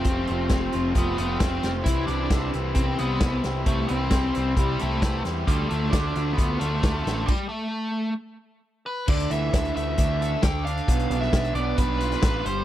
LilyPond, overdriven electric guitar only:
\new Staff \with { instrumentName = "Overdriven electric guitar" } { \time 4/4 \key d \dorian \tempo 4 = 133 <f, c f a c' f'>8 <f a c' f'>8 <f, c f a c' f'>8 <f a c' f'>4 <f a c' f'>8 <f a c' f'>4 | <c e g c' e'>8 <g c' e'>8 <c e g c' e'>8 <g c' e'>4 <g c' e'>8 <e g c' e'>4 | <c e g c' e'>8 <g c' e'>8 <c e g c' e'>8 <g c' e'>4 <g c' e'>8 <e g c' e'>4 | <d a d' f'>8 <a d' f'>8 <d a d' f'>8 <a d' f'>4 <a d' f'>8 <d a d' f'>4 |
r1 | d8 e8 d'8 a8 d'8 a'8 d''8 d'8 | b8 d'8 d'8 b8 d'8 f'8 b'8 g8 | }